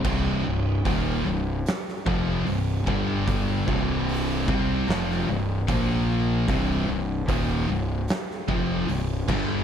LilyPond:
<<
  \new Staff \with { instrumentName = "Distorted electric guitar" } { \clef bass \time 4/4 \key c \minor \tempo 4 = 75 <c, g, c>8 <c, g,>8 <ees, bes, ees>8 <c, g,>8 r8 <f, c f>8 <c, g,>8 <g, d g>8~ | <g, d g>8 <c, g, c>4 <c g c'>8 <f, c f>8 <c, g,>8 <bes, f bes>4 | <c, g, c>8 <c, g,>8 <ees, bes, ees>8 <c, g,>8 r8 <f, c f>8 <c, g,>8 <g, d g>8 | }
  \new Staff \with { instrumentName = "Distorted electric guitar" } { \clef bass \time 4/4 \key c \minor <c, g, c>8 <c, g,>8 <ees, bes, ees>8 <c, g,>8 r8 <f, c f>8 <c, g,>8 <g, d g>8~ | <g, d g>8 <c, g, c>4 <c g c'>8 <f, c f>8 <c, g,>8 <bes, f bes>4 | <c, g, c>8 <c, g,>8 <ees, bes, ees>8 <c, g,>8 r8 <f, c f>8 <c, g,>8 <g, d g>8 | }
  \new Staff \with { instrumentName = "Distorted electric guitar" } { \clef bass \time 4/4 \key c \minor <c, g, c>8 <c, g,>8 <ees, bes, ees>8 <c, g,>8 r8 <f, c f>8 <c, g,>8 <g, d g>8~ | <g, d g>8 <c, g, c>4 <c g c'>8 <f, c f>8 <c, g,>8 <bes, f bes>4 | <c, g, c>8 <c, g,>8 <ees, bes, ees>8 <c, g,>8 r8 <f, c f>8 <c, g,>8 <g, d g>8 | }
  \new Staff \with { instrumentName = "Fingered electric bass" } { \clef bass \time 4/4 \key c \minor c,,8 c,,8 ees,,8 c,,8 r8 f,,8 c,,8 g,,8~ | g,,8 c,,4 c,8 f,,8 c,,8 bes,,4 | c,,8 c,,8 ees,,8 c,,8 r8 f,,8 c,,8 g,,8 | }
  \new DrumStaff \with { instrumentName = "Drums" } \drummode { \time 4/4 <cymc bd>4 <hho bd>4 <hho sn>16 sn16 bd8 hho8 bd8 | <hho bd>8 bd8 hho8 bd8 <hho sn>16 sn8. <hho bd>4 | <hho bd>4 <hho bd>4 <hho sn>16 sn16 bd8 hho8 <cymc bd>8 | }
>>